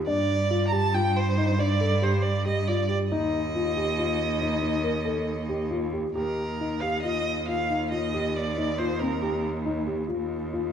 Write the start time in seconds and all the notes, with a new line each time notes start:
0.07 G2 D4 D5
0.50 F4
0.67 A#5
0.72 G4 A5
0.94 F4 G5
1.17 C5
1.38 D#4
1.59 D4 D5
1.81 A4
2.02 G4 C5
2.22 D5
2.46 G4 D#5
2.68 F4 D5
2.88 G4 D5
3.09 D#2 D#4 D#5
3.55 F4
3.77 G4
3.98 F4
4.42 D#4
4.62 D#4
4.84 A#4
5.05 A4
5.49 G4
5.71 F4
5.93 G4
6.15 D#2 G4 A#4
6.61 D#4
6.81 G4 F5
7.03 F4 D#5
7.48 F4 F5
7.70 D#4
7.91 F4 D#5
8.14 G4
8.36 D5
8.58 D#4
8.78 F4 C5
8.99 C4 A#4
9.22 G4
9.66 D#4
9.87 G4
10.08 F4
10.53 F4